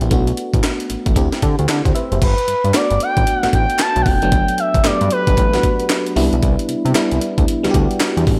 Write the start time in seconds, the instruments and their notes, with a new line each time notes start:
Already playing: fm electric piano B3 D4 E4 G4
0.01 analog synth bass A#1, fm electric piano B3 E4, closed hi-hat
0.10 analog synth bass B1, fm electric piano A3 B3 D4 F#4, kick, closed hi-hat
0.27 closed hi-hat
0.37 closed hi-hat
0.54 analog synth bass A1, kick, closed hi-hat
0.64 snare, clap, closed hi-hat
0.80 closed hi-hat
0.90 analog synth bass A1, closed hi-hat
1.06 analog synth bass A1, kick, closed hi-hat
1.15 analog synth bass D2, fm electric piano A3 C4 E4 G4, kick, closed hi-hat
1.32 snare, closed hi-hat
1.42 analog synth bass D3, kick, closed hi-hat
1.59 analog synth bass D2, closed hi-hat
1.69 analog synth bass D3, snare, clap, closed hi-hat
1.85 analog synth bass D2, fm electric piano G4 C5, kick, closed hi-hat
1.95 fm electric piano B4 E5, closed hi-hat
2.12 analog synth bass F#1, fm electric piano G4 C5, closed hi-hat
2.22 analog synth bass G1, analog synth lead B4, kick, closed hi-hat, crash
2.38 closed hi-hat
2.48 analog synth bass G2, closed hi-hat
2.64 analog synth bass G2, closed hi-hat
2.74 fm electric piano A3 B3 D4 F#4, analog synth lead D5, snare, clap, closed hi-hat
2.90 analog synth bass G1, closed hi-hat
3.00 analog synth lead G5, closed hi-hat
3.17 analog synth bass A1, kick, closed hi-hat
3.27 closed hi-hat
3.37 analog synth lead F#5
3.43 analog synth bass A1, fm electric piano A3 B3 D4 F#4, snare, closed hi-hat
3.53 analog synth bass A1, analog synth lead G5, kick, closed hi-hat
3.70 closed hi-hat
3.79 analog synth lead A5, snare, clap, closed hi-hat
3.96 analog synth bass B1, closed hi-hat
4.02 analog synth lead F#5
4.06 analog synth bass F1, analog synth lead G5, kick, open hi-hat
4.22 analog synth bass F#1, fm electric piano F#3 A3 B3 D4, closed hi-hat
4.32 analog synth bass G1, kick, closed hi-hat
4.48 closed hi-hat
4.58 analog synth lead E5, closed hi-hat
4.74 analog synth bass G1, kick, closed hi-hat
4.84 analog synth bass G2, fm electric piano A3 B3 D4 G4, analog synth lead D5, snare, clap, closed hi-hat
5.01 analog synth bass G2, closed hi-hat
5.11 analog synth lead B4, closed hi-hat
5.27 analog synth bass G1, kick, closed hi-hat
5.37 analog synth bass A1, kick, closed hi-hat
5.53 fm electric piano A3 B3 D4 F#4, snare, closed hi-hat
5.63 kick, closed hi-hat
5.80 closed hi-hat
5.90 snare, clap, closed hi-hat
6.06 closed hi-hat
6.16 analog synth bass C2, fm electric piano G3 B3 D4 E4, open hi-hat
6.32 analog synth bass B1, closed hi-hat
6.43 analog synth bass C2, kick, closed hi-hat
6.59 closed hi-hat
6.69 analog synth bass C3, closed hi-hat
6.85 analog synth bass C3, closed hi-hat
6.95 fm electric piano G3 B3 D4 E4, snare, clap, closed hi-hat
7.11 analog synth bass C2, closed hi-hat
7.21 closed hi-hat
7.38 analog synth bass D2, kick, closed hi-hat
7.48 closed hi-hat
7.63 analog synth bass D2, fm electric piano G3 B3 D4 F#4, snare, closed hi-hat
7.71 analog synth bass D2, fm electric piano G4, kick, closed hi-hat
7.91 closed hi-hat
8.00 snare, clap, closed hi-hat
8.17 analog synth bass E2, closed hi-hat
8.27 analog synth bass A1, kick, open hi-hat